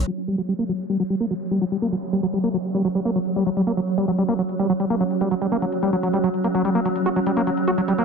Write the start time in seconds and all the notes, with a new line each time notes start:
0.07 F#3 C#4, downlifter
0.24 G3 F#4, closed hi-hat
0.38 F#3, closed hi-hat
0.44 G3 C#6, closed hi-hat
0.59 A#3, closed hi-hat
0.69 F#3, closed hi-hat
0.79 F#5, closed hi-hat
0.89 G3, closed hi-hat
1.00 F#3, closed hi-hat
1.10 G3, closed hi-hat
1.20 A#3, closed hi-hat
1.31 F#3, closed hi-hat
1.41 closed hi-hat
1.51 G3, closed hi-hat
1.61 F#3, closed hi-hat
1.72 G3, closed hi-hat
1.82 A#3, closed hi-hat
1.92 F#3, closed hi-hat
2.02 closed hi-hat
2.13 G3, closed hi-hat
2.23 F#3, closed hi-hat
2.33 G3, closed hi-hat
2.44 A#3, closed hi-hat
2.54 F#3, closed hi-hat
2.64 closed hi-hat
2.74 G3, closed hi-hat
2.85 F#3, closed hi-hat
2.95 G3, closed hi-hat
3.05 A#3, closed hi-hat
3.15 F#3, closed hi-hat
3.26 closed hi-hat
3.36 G3, closed hi-hat
3.46 F#3, closed hi-hat
3.57 G3, closed hi-hat
3.67 A#3, closed hi-hat
3.77 F#3, closed hi-hat
3.87 closed hi-hat
3.98 G3, closed hi-hat
4.08 F#3, closed hi-hat
4.18 G3, closed hi-hat
4.29 A#3, closed hi-hat
4.39 F#3, closed hi-hat
4.49 closed hi-hat
4.59 G3, closed hi-hat
4.70 F#3, closed hi-hat
4.80 G3, closed hi-hat
4.90 A#3, closed hi-hat
5.00 F#3, closed hi-hat
5.11 closed hi-hat
5.21 G3, closed hi-hat
5.31 F#3, closed hi-hat
5.41 G3, closed hi-hat
5.52 A#3, closed hi-hat
5.62 F#3, closed hi-hat
5.72 closed hi-hat
5.83 G3, closed hi-hat
5.93 F#3, closed hi-hat
6.03 F#3, closed hi-hat
6.13 G3, closed hi-hat
6.24 F#3, closed hi-hat
6.34 closed hi-hat
6.44 A#3, closed hi-hat
6.55 F#3, closed hi-hat
6.65 G3, closed hi-hat
6.75 A#3, closed hi-hat
6.85 F#3, closed hi-hat
6.96 closed hi-hat
7.06 F#4 B5, closed hi-hat
7.16 F#3, closed hi-hat
7.26 G3, closed hi-hat
7.37 A#3, closed hi-hat
7.47 F#3, closed hi-hat
7.57 closed hi-hat
7.68 F#4, closed hi-hat
7.78 F#3, closed hi-hat
7.88 G3, closed hi-hat
7.98 A#3, closed hi-hat